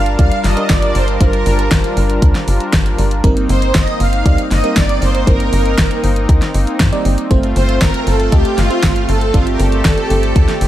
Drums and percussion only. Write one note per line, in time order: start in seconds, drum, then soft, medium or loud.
0.06 closed hi-hat soft
0.19 kick loud
0.19 closed hi-hat medium
0.32 closed hi-hat soft
0.44 snare soft
0.44 open hi-hat medium
0.57 closed hi-hat soft
0.70 kick loud
0.70 snare loud
0.70 closed hi-hat medium
0.82 closed hi-hat soft
0.95 open hi-hat medium
1.08 closed hi-hat soft
1.21 kick loud
1.21 closed hi-hat medium
1.33 closed hi-hat soft
1.46 open hi-hat medium
1.59 closed hi-hat soft
1.71 kick loud
1.71 snare loud
1.71 closed hi-hat medium
1.84 closed hi-hat soft
1.97 open hi-hat medium
2.10 closed hi-hat soft
2.22 kick loud
2.22 closed hi-hat medium
2.35 snare soft
2.35 closed hi-hat soft
2.48 open hi-hat medium
2.60 closed hi-hat soft
2.73 kick loud
2.73 snare loud
2.73 closed hi-hat medium
2.86 closed hi-hat soft
2.98 open hi-hat medium
3.11 closed hi-hat soft
3.24 kick loud
3.24 closed hi-hat medium
3.37 closed hi-hat soft
3.49 open hi-hat medium
3.62 closed hi-hat soft
3.75 kick loud
3.75 snare loud
3.75 closed hi-hat medium
3.88 closed hi-hat soft
4.00 open hi-hat medium
4.13 closed hi-hat soft
4.26 kick loud
4.26 closed hi-hat medium
4.38 closed hi-hat soft
4.51 snare soft
4.51 open hi-hat medium
4.64 closed hi-hat soft
4.76 kick loud
4.76 snare loud
4.76 closed hi-hat medium
4.89 closed hi-hat soft
5.02 open hi-hat medium
5.15 closed hi-hat soft
5.27 kick loud
5.27 closed hi-hat medium
5.40 closed hi-hat soft
5.53 open hi-hat medium
5.66 closed hi-hat soft
5.78 kick loud
5.78 snare loud
5.78 closed hi-hat medium
5.91 closed hi-hat soft
6.04 open hi-hat medium
6.16 closed hi-hat soft
6.29 kick loud
6.29 closed hi-hat medium
6.42 snare soft
6.42 closed hi-hat soft
6.54 open hi-hat medium
6.67 closed hi-hat soft
6.80 kick loud
6.80 snare loud
6.80 closed hi-hat medium
6.93 closed hi-hat soft
7.05 open hi-hat medium
7.18 closed hi-hat soft
7.31 kick loud
7.31 closed hi-hat medium
7.43 closed hi-hat soft
7.56 open hi-hat medium
7.69 closed hi-hat soft
7.81 kick loud
7.81 snare loud
7.81 closed hi-hat medium
7.94 closed hi-hat soft
8.07 open hi-hat medium
8.20 closed hi-hat soft
8.32 kick loud
8.32 closed hi-hat medium
8.45 closed hi-hat soft
8.58 snare soft
8.58 open hi-hat medium
8.71 closed hi-hat soft
8.83 kick loud
8.83 snare loud
8.83 closed hi-hat medium
8.96 closed hi-hat soft
9.09 open hi-hat medium
9.21 closed hi-hat soft
9.34 kick loud
9.34 closed hi-hat medium
9.47 closed hi-hat soft
9.59 open hi-hat medium
9.72 closed hi-hat soft
9.85 kick loud
9.85 snare loud
9.85 closed hi-hat medium
9.98 closed hi-hat soft
10.10 open hi-hat medium
10.23 closed hi-hat soft
10.36 kick loud
10.36 closed hi-hat medium
10.48 snare soft
10.48 closed hi-hat soft
10.61 open hi-hat medium